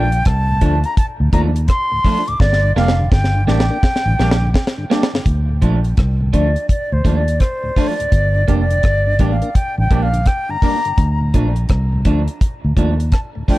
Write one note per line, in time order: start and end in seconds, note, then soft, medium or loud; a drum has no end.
0.00 0.24 A#1 medium
0.00 0.28 G5 loud
0.12 closed hi-hat medium
0.25 0.60 C2 loud
0.25 0.87 A5 loud
0.25 kick loud
0.25 cross-stick loud
0.25 closed hi-hat medium
0.49 0.57 D2 medium
0.49 0.57 A2 medium
0.61 0.83 D2 medium
0.61 0.77 F3 medium
0.61 0.75 F3 medium
0.61 0.75 A3 medium
0.61 0.78 A3 medium
0.61 0.75 D4 medium
0.61 0.78 D4 medium
0.61 kick medium
0.61 closed hi-hat medium
0.84 0.97 A#5 medium
0.84 closed hi-hat medium
0.97 1.06 A5 loud
0.97 kick loud
0.97 closed hi-hat loud
1.20 1.32 D2 medium
1.20 1.28 D2 medium
1.20 1.28 A2 medium
1.33 1.67 D#2 loud
1.33 1.49 F3 medium
1.33 1.47 F3 medium
1.33 1.47 A3 medium
1.33 1.49 A3 medium
1.33 1.47 D4 medium
1.33 1.50 D4 medium
1.33 1.41 A#5 loud
1.33 kick loud
1.33 closed hi-hat medium
1.56 closed hi-hat medium
1.68 2.29 C6 loud
1.68 kick loud
1.68 cross-stick medium
1.68 closed hi-hat medium
1.92 2.00 D2 medium
1.92 2.00 A2 medium
2.04 2.18 F3 medium
2.04 2.21 F3 medium
2.04 2.19 A3 medium
2.04 2.21 A3 medium
2.04 2.19 D4 medium
2.04 2.21 D4 loud
2.04 kick medium
2.04 open hi-hat medium
2.28 2.36 D2 medium
2.28 2.36 A2 medium
2.28 2.42 D6 loud
2.28 closed hi-hat medium
2.40 2.74 G1 loud
2.40 2.75 D5 loud
2.40 kick loud
2.40 snare medium
2.53 snare medium
2.63 2.71 G2 medium
2.63 2.71 D3 medium
2.76 3.10 F1 medium
2.76 2.90 G3 medium
2.76 2.92 A#3 loud
2.76 2.90 A#3 medium
2.76 2.92 D4 loud
2.76 2.90 D4 medium
2.76 2.93 G4 loud
2.76 3.09 F5 loud
2.76 snare medium
2.88 snare medium
2.99 3.07 G2 medium
2.99 3.07 D3 medium
3.11 3.46 G1 loud
3.11 3.45 G5 loud
3.11 kick loud
3.11 snare medium
3.24 snare medium
3.35 3.43 G2 medium
3.35 3.43 D3 medium
3.47 3.69 A1 loud
3.47 3.62 G3 medium
3.47 3.63 A#3 medium
3.47 3.62 A#3 medium
3.47 3.64 D4 medium
3.47 3.62 D4 medium
3.47 3.64 G4 loud
3.47 4.86 G5 loud
3.47 snare medium
3.60 snare medium
3.70 3.78 A#3 medium
3.70 3.78 D4 medium
3.83 kick loud
3.83 snare medium
3.96 snare medium
4.06 4.18 A1 medium
4.06 4.14 G2 medium
4.06 4.14 D3 medium
4.19 4.53 A#1 medium
4.19 4.33 G3 medium
4.19 4.33 A#3 medium
4.19 4.35 A#3 loud
4.19 4.33 D4 medium
4.19 4.36 D4 medium
4.19 4.36 G4 loud
4.19 snare medium
4.31 snare loud
4.42 4.50 G2 medium
4.42 4.50 D3 medium
4.54 kick medium
4.54 snare loud
4.67 snare medium
4.78 4.86 G2 medium
4.78 4.86 D3 medium
4.90 5.04 G3 medium
4.90 5.06 A#3 medium
4.90 5.04 A#3 medium
4.90 5.07 D4 medium
4.90 5.05 D4 medium
4.90 5.07 G4 medium
4.90 snare medium
5.03 snare loud
5.13 5.21 G2 medium
5.13 5.21 D3 medium
5.13 snare loud
5.26 5.60 D2 loud
5.26 kick loud
5.26 closed hi-hat medium
5.49 5.57 D2 medium
5.49 5.57 A2 medium
5.62 5.96 A#1 medium
5.62 5.78 F3 medium
5.62 5.76 F3 medium
5.62 5.76 A3 medium
5.62 5.78 A3 medium
5.62 5.76 D4 medium
5.62 5.79 D4 loud
5.62 kick medium
5.62 closed hi-hat medium
5.84 closed hi-hat medium
5.97 6.32 C2 loud
5.97 kick loud
5.97 cross-stick loud
5.97 closed hi-hat medium
6.20 6.28 D2 medium
6.20 6.28 A2 medium
6.33 6.55 D2 medium
6.33 6.49 F3 medium
6.33 6.47 F3 medium
6.33 6.47 A3 medium
6.33 6.50 A3 medium
6.33 6.47 D4 medium
6.33 6.50 D4 medium
6.33 6.67 D5 medium
6.33 kick medium
6.33 closed hi-hat medium
6.56 closed hi-hat soft
6.69 6.94 D5 medium
6.69 kick loud
6.69 closed hi-hat loud
6.92 7.00 D2 medium
6.92 7.05 D2 medium
6.92 7.00 A2 medium
6.92 7.18 C5 medium
7.05 7.39 D#2 medium
7.05 7.21 F3 medium
7.05 7.19 F3 medium
7.05 7.19 A3 medium
7.05 7.21 A3 medium
7.05 7.19 D4 medium
7.05 7.21 D4 medium
7.05 kick medium
7.05 closed hi-hat medium
7.17 7.42 D5 medium
7.28 closed hi-hat medium
7.40 7.89 C5 medium
7.40 kick medium
7.40 cross-stick medium
7.40 closed hi-hat medium
7.63 7.71 D2 medium
7.63 7.71 A2 medium
7.76 7.90 F3 medium
7.76 7.93 F3 medium
7.76 7.90 A3 medium
7.76 7.93 A3 medium
7.76 7.91 D4 medium
7.76 7.93 D4 medium
7.76 kick medium
7.76 open hi-hat medium
7.88 8.58 D5 medium
7.99 8.07 D2 medium
7.99 8.07 A2 medium
7.99 closed hi-hat medium
8.12 8.46 G1 loud
8.12 kick loud
8.12 closed hi-hat loud
8.35 8.43 G2 medium
8.35 8.43 D3 medium
8.48 8.82 F1 medium
8.48 8.62 G3 medium
8.48 8.64 A#3 loud
8.48 8.62 A#3 medium
8.48 8.62 D4 medium
8.48 8.64 D4 medium
8.48 8.64 G4 loud
8.48 kick medium
8.48 closed hi-hat medium
8.59 9.27 D5 loud
8.70 8.79 G2 medium
8.70 8.79 D3 medium
8.70 closed hi-hat soft
8.83 9.18 G1 medium
8.83 kick loud
8.83 cross-stick loud
8.83 closed hi-hat medium
9.07 9.15 G2 medium
9.07 9.15 D3 medium
9.19 9.41 A1 medium
9.19 9.33 G3 medium
9.19 9.33 A#3 medium
9.19 9.36 A#3 medium
9.19 9.33 D4 medium
9.19 9.36 D4 medium
9.19 9.36 G4 medium
9.19 kick medium
9.19 closed hi-hat medium
9.31 9.57 F5 medium
9.42 9.50 A#3 medium
9.42 9.50 D4 medium
9.42 closed hi-hat soft
9.55 9.79 G5 loud
9.55 kick loud
9.55 closed hi-hat loud
9.78 9.90 A1 medium
9.78 9.86 G2 medium
9.78 9.86 D3 medium
9.78 10.04 G5 loud
9.91 10.25 A#1 medium
9.91 10.05 G3 medium
9.91 10.07 A#3 medium
9.91 10.05 A#3 medium
9.91 10.05 D4 medium
9.91 10.07 D4 medium
9.91 10.08 G4 medium
9.91 kick medium
9.91 closed hi-hat medium
10.03 10.29 F5 loud
10.13 10.22 G2 medium
10.13 10.21 D3 medium
10.13 closed hi-hat medium
10.26 10.52 G5 medium
10.26 kick loud
10.26 cross-stick medium
10.26 closed hi-hat medium
10.49 10.57 G2 medium
10.49 10.57 D3 medium
10.49 11.22 A#5 loud
10.62 10.76 G3 medium
10.62 10.76 A#3 medium
10.62 10.79 A#3 medium
10.62 10.76 D4 medium
10.62 10.79 D4 medium
10.62 10.79 G4 medium
10.62 kick medium
10.62 open hi-hat medium
10.85 10.93 G2 medium
10.85 10.93 D3 medium
10.85 closed hi-hat medium
10.98 11.32 D2 loud
10.98 kick loud
10.98 closed hi-hat medium
11.21 11.29 D2 medium
11.21 11.29 A2 medium
11.34 11.68 A#1 medium
11.34 11.48 F3 medium
11.34 11.50 F3 medium
11.34 11.48 A3 medium
11.34 11.50 A3 medium
11.34 11.48 D4 medium
11.34 11.51 D4 medium
11.34 kick medium
11.34 closed hi-hat medium
11.56 closed hi-hat soft
11.69 12.04 C2 medium
11.69 kick loud
11.69 cross-stick loud
11.69 closed hi-hat medium
11.93 12.00 D2 medium
11.93 12.01 A2 medium
12.05 12.27 D2 medium
12.05 12.21 F3 medium
12.05 12.19 F3 medium
12.05 12.22 A3 medium
12.05 12.20 A3 medium
12.05 12.22 D4 loud
12.05 12.20 D4 medium
12.05 kick medium
12.05 closed hi-hat medium
12.28 closed hi-hat medium
12.41 kick loud
12.41 closed hi-hat loud
12.64 12.72 D2 medium
12.64 12.76 D2 medium
12.64 12.72 A2 medium
12.77 13.11 D#2 loud
12.77 12.91 F3 medium
12.77 12.93 F3 medium
12.77 12.91 A3 medium
12.77 12.93 A3 medium
12.77 12.91 D4 medium
12.77 12.94 D4 medium
12.77 kick medium
12.77 closed hi-hat medium
13.00 closed hi-hat medium
13.12 13.21 A5 medium
13.12 kick loud
13.12 cross-stick medium
13.12 closed hi-hat medium
13.35 13.43 D2 soft
13.35 13.43 A2 medium
13.48 13.58 F3 medium
13.48 13.58 A3 medium
13.48 13.58 D4 medium
13.48 13.58 G5 medium
13.48 kick medium
13.48 open hi-hat medium